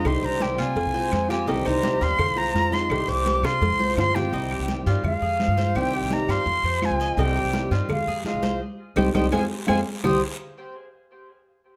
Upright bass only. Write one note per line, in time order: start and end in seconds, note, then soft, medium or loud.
0.05 0.22 C2 loud
0.22 0.57 C2 medium
0.58 0.75 C3 loud
0.76 0.85 F2 loud
0.85 1.11 C2 medium
1.12 1.46 F2 loud
1.48 1.65 C2 loud
1.66 2.00 C2 loud
2.01 2.18 D#2 loud
2.19 2.27 F2 loud
2.28 2.53 C2 medium
2.54 2.88 F2 loud
2.90 3.07 C2 loud
3.08 3.42 C2 medium
3.43 3.60 C3 loud
3.61 3.69 F2 loud
3.70 3.95 C2 medium
3.97 4.31 G2 medium
4.33 4.58 C2 loud
4.59 4.85 C2 medium
4.87 4.95 G2 loud
5.03 5.21 F2 loud
5.22 5.47 F2 medium
5.48 5.74 G2 medium
5.75 6.01 C2 loud
6.02 6.28 C2 medium
6.28 6.37 G2 loud
6.46 6.63 F2 loud
6.63 6.89 F2 medium
6.90 7.16 C#2 medium
7.17 7.43 C2 loud
7.44 7.70 C2 medium
7.71 7.80 G2 loud
7.89 8.06 F2 loud
8.07 8.33 F2 medium
8.34 8.59 C2 medium
8.97 9.10 C2 loud
9.15 9.28 C2 loud
9.33 9.46 F2 loud
9.69 9.82 F2 loud
10.04 10.21 C2 loud